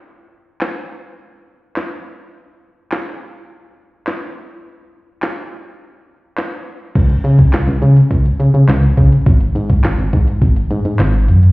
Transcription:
<<
  \new Staff \with { instrumentName = "FM bass" } { \clef bass \time 4/4 \key aes \mixolydian \tempo 4 = 104 r1 | r1 | r1 | des,8 des8 des,16 des,16 des8 des,8 des16 des16 des,8 des8 |
aes,,8 aes,8 aes,,16 aes,,16 aes,8 aes,,8 aes,16 aes,16 aes,,8 ges,8 | }
  \new DrumStaff \with { instrumentName = "Drums" } \drummode { \time 4/4 r4 <hc sn>4 r4 <hc sn>4 | r4 <hc sn>4 r4 <hc sn>4 | r4 <hc sn>4 r4 <hc sn>4 | <cymc hh bd>16 hh16 hh16 <hh bd>16 <hc hh sn>16 hh16 hh16 hh16 <hh bd>16 hh16 hh16 hh16 <hc hh sn>16 hh16 <hh bd>16 hh16 |
<hh bd>16 hh16 hh16 <hh bd>16 <hc hh sn>16 hh16 <hh bd>16 hh16 <hh bd>16 hh16 hh16 hh16 <hc hh sn>16 hh16 hh16 hh16 | }
>>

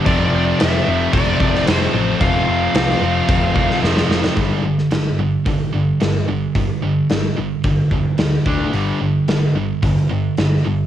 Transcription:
<<
  \new Staff \with { instrumentName = "Lead electric guitar" } { \time 4/4 \key f \lydian \tempo 4 = 110 d''4 e''4 d''4 c''4 | f''2. r4 | r1 | r1 |
r1 | }
  \new Staff \with { instrumentName = "Distorted electric guitar" } { \clef bass \time 4/4 \key f \lydian <f, c f a c'>8 <f, c f a c'>8 <f, c f a c'>8 <f, c f a c'>8 <f, c f a c'>8 <f, c f a c'>8 <f, c f a c'>8 <f, c f a c'>8 | <f, c f a c'>8 <f, c f a c'>8 <f, c f a c'>8 <f, c f a c'>8 <f, c f a c'>8 <f, c f a c'>8 <f, c f a c'>8 <f, c f a c'>8 | r1 | r1 |
r1 | }
  \new Staff \with { instrumentName = "Overdriven electric guitar" } { \clef bass \time 4/4 \key f \lydian <f, c f>1 | <f, c f>1 | <g, d g>8 <g, d>8 <g, d>8 <g, d>8 <g, d>8 <g, d>8 <g, d>8 <g, d>8 | <g, d>8 <g, d>8 <g, d>8 <g, d>8 <g, d>8 <g, d>8 <g, d>8 <d a d'>8 |
<g, d g>8 <g, d>8 <g, d>8 <g, d>8 <g, d>8 <g, d>8 <g, d>8 <g, d>8 | }
  \new Staff \with { instrumentName = "Distorted electric guitar" } { \clef bass \time 4/4 \key f \lydian <f, c f>4. <f, c f>4. <f, c f>4 | <f, c f>4. <f, c f>4. <f, c f>4 | <g, d g>8 <g, d>8 <g, d>8 <g, d>8 <g, d>8 <g, d>8 <g, d>8 <g, d>8 | <g, d>8 <g, d>8 <g, d>8 <g, d>8 <g, d>8 <g, d>8 <g, d>8 <d a d'>8 |
<g, d g>8 <g, d>8 <g, d>8 <g, d>8 <g, d>8 <g, d>8 <g, d>8 <g, d>8 | }
  \new Staff \with { instrumentName = "Picked electric bass" } { \clef bass \time 4/4 \key f \lydian f,,8 f,,8 f,,8 f,,8 f,8 f,,8 f,,8 a,,8 | f,,8 f,,8 c,8 f,,8 f,,4 f,,8 f,,8 | g,,8 g,,8 g,,8 g,,8 g,,8 g,,8 g,,8 g,,8 | g,,8 g,,8 g,,8 g,,8 g,,8 g,,8 d,8 d,8 |
g,,8 g,,8 g,,8 g,,8 g,,8 g,,8 g,,8 g,,8 | }
  \new DrumStaff \with { instrumentName = "Drums" } \drummode { \time 4/4 <cymc bd>4 <cymc sn>4 <cymc bd>8 bd16 sn16 <cymc sn>4 | <cymc bd>4 <cymc sn>16 sn8. <cymc bd>8 bd16 sn16 sn16 sn16 sn16 sn16 | <hho bd>8. sn16 <hho sn>4 <hho bd>4 <hho sn>4 | <hho bd>4 <hho sn>4 <hho bd>8 bd8 <hho sn>8 bd8 |
hho4 <hho sn>4 <hho bd>4 <hho sn>4 | }
>>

